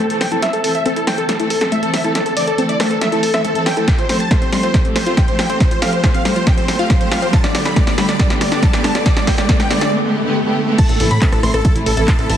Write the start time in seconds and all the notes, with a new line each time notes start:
Already playing: riser
0.10 E3 A3 C4 A4, closed hi-hat
0.21 A4 G5, cross-stick, snare, open hi-hat
0.31 E3 A3 C4 E4 A4, closed hi-hat
0.42 E5, snare, closed hi-hat
0.53 A4, closed hi-hat
0.64 E3 A3 C4 A4, open hi-hat
0.75 E5, closed hi-hat
0.85 E3 A3 C4 A4, closed hi-hat
0.96 E4 A4, closed hi-hat
1.07 E3 A3 C4 A4 G5, cross-stick, snare, open hi-hat
1.18 A4, closed hi-hat
1.29 E3 A3 C4 A4, snare, closed hi-hat
1.40 E3 A3 C4 E4 A4, closed hi-hat
1.50 A4, open hi-hat
1.61 E3 A3 C4 A4, snare, closed hi-hat
1.72 A3 E5, closed hi-hat
1.83 E3 A3 C4 A4, closed hi-hat
1.93 A4 E5, snare, open hi-hat
2.04 E3 A3 C4 E4 A4, closed hi-hat
2.15 A4, snare, closed hi-hat
2.26 A4, closed hi-hat
2.37 E3 A3 C4 A4 D5, open hi-hat
2.47 A4, closed hi-hat
2.58 E3 A3 C4 A4, closed hi-hat
2.69 E4 D5, closed hi-hat
2.80 E3 A3 C4 A4, cross-stick, snare, open hi-hat
2.91 A4, closed hi-hat
3.01 E3 A3 C4 A4 E5, snare, closed hi-hat
3.12 E3 A3 C4 E4 A4, closed hi-hat
3.23 A4, open hi-hat
3.34 E3 A3 C4 A4 E5, cross-stick, snare, closed hi-hat
3.44 A3 A4, closed hi-hat
3.55 E3 A3 C4 A4, closed hi-hat
3.66 A4 G5, cross-stick, snare, open hi-hat
3.77 E3 A3 C4 E4 A4, closed hi-hat
3.88 G5, kick, snare, closed hi-hat
3.99 F4 C5, closed hi-hat
4.09 F3 A3 C4 G4 C5, snare, open hi-hat
4.20 A5, closed hi-hat
4.31 F3 A3 C4 G4 C5, kick, snare, closed hi-hat
4.42 C4 C5, closed hi-hat
4.52 F3 G3 A3 C4 G4 C6, snare, open hi-hat
4.63 F4 C5, closed hi-hat
4.74 F3 A3 C4 G4 C5, kick, snare, closed hi-hat
4.85 F3 A3 C4 G4, closed hi-hat
4.96 C5, snare, open hi-hat
5.06 F3 A3 C4 F4 G4 C5, closed hi-hat
5.17 G3 G5, kick, snare, closed hi-hat
5.28 F3 A3 C4 G4 C5, closed hi-hat
5.39 F4 G5, snare, open hi-hat
5.50 F3 A3 C4 G4 C5, closed hi-hat
5.60 C5, kick, snare, closed hi-hat
5.71 F4 C5, closed hi-hat
5.82 F3 A3 C4 G4 F5, snare, open hi-hat
5.93 C5, closed hi-hat
6.04 F3 A3 C4 G4 C5, kick, snare, closed hi-hat
6.14 C4 F5, closed hi-hat
6.25 F3 G3 A3 C4 G4 C5, snare, open hi-hat
6.36 F4 C5, closed hi-hat
6.47 F3 A3 C4 G4 G5, kick, snare, closed hi-hat
6.57 F3 A3 C4 G4 C5, closed hi-hat
6.68 C5, snare, open hi-hat
6.79 F3 A3 C4 F4 G4 F5, closed hi-hat
6.90 G3 C5, kick, snare, closed hi-hat
7.01 F3 A3 C4 G4 C5, closed hi-hat
7.11 F4 F5, snare, open hi-hat
7.22 F3 A3 C4 G4 C5, closed hi-hat
7.33 A5, kick, snare, closed hi-hat
7.44 D4 D5, snare, closed hi-hat
7.55 D3 A3 B3 G4 D5, snare, open hi-hat
7.65 B5, snare, closed hi-hat
7.76 D3 A3 B3 G4 D5, kick, snare, closed hi-hat
7.87 B3 D5, snare, closed hi-hat
7.98 D3 G3 A3 B3 G4 B5, snare, open hi-hat
8.08 D4 D5, snare, closed hi-hat
8.19 D3 A3 B3 G4 D5, kick, snare, closed hi-hat
8.30 D3 A3 B3 G4, snare, closed hi-hat
8.41 D5, snare, open hi-hat
8.52 D3 A3 B3 D4 G4 D5, snare, closed hi-hat
8.62 G3 A5, kick, snare, closed hi-hat
8.73 D3 A3 B3 G4 D5, snare, closed hi-hat
8.84 D4 A5, snare, open hi-hat
8.95 D3 A3 B3 G4 D5, snare, closed hi-hat
9.06 D5, kick, snare, closed hi-hat
9.16 D4 D5, snare, closed hi-hat
9.27 D3 A3 B3 G4 G5, kick, snare, open hi-hat
9.38 D5, snare, closed hi-hat
9.49 D3 A3 B3 G4 D5, kick, snare, closed hi-hat
9.60 B3 G5, snare, closed hi-hat
9.70 D3 G3 A3 B3 G4 D5, snare, open hi-hat
9.81 D4 D5, snare, closed hi-hat
9.92 D3 A3 B3 G4, swell
10.03 D3 A3 B3 G4
10.24 D3 A3 B3 G4
10.46 D3 A3 B3 G4
10.67 D3 A3 B3 G4
10.78 A5, kick, closed hi-hat, crash
10.89 A1 A4, closed hi-hat
11.00 A1 C3 E3 A3 E4 A4, open hi-hat
11.11 A2 B5, closed hi-hat
11.22 C3 E3 A3 C4 E4 A4, kick, clap, closed hi-hat
11.32 A1 E4 A4, cross-stick, closed hi-hat
11.43 A1 C3 E3 A3 E4 C6, cross-stick, open hi-hat
11.54 A1 A4, cross-stick, closed hi-hat
11.65 C3 E3 A3 E4 A4, kick, closed hi-hat
11.76 A1 C3 E3 A3 E4, closed hi-hat
11.86 A1 A4, open hi-hat
11.97 A1 C3 E3 A3 E4 A4, closed hi-hat
12.08 A3 A5, kick, clap, closed hi-hat
12.19 A1 C3 E3 A3 E4 A4, closed hi-hat
12.29 A1 A4 A5, open hi-hat